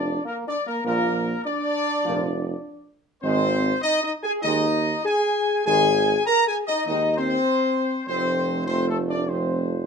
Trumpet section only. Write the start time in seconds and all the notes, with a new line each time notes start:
Already playing: D5
0.27 A#4
0.47 D5
0.67 A#4
0.85 A#4
1.45 D5
3.23 C5
3.82 D#5
4.03 D#5
4.23 G#5
4.42 D#5
5.06 G#5
5.65 G#5
6.26 A#5
6.48 G#5
6.67 D#5
6.87 D#5
7.16 C5
8.07 C5
8.67 C5
8.89 A4
9.09 D5
9.28 C5